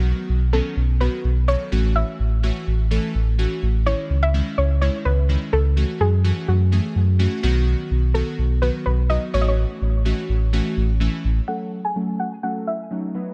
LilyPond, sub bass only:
\new Staff \with { instrumentName = "Sub bass" } { \clef bass \time 4/4 \key fis \dorian \tempo 4 = 126 b,,8 b,,4 b,,4 b,,4 a,,8~ | a,,8 a,,4 a,,4 a,,4 a,,8~ | a,,8 cis,4 cis,4 cis,4 cis,8~ | cis,8 fis,4 fis,4 fis,4 b,,8~ |
b,,8 b,,4 b,,4 b,,4 a,,8~ | a,,8 a,,4 a,,4 a,,4 a,,8 | r1 | }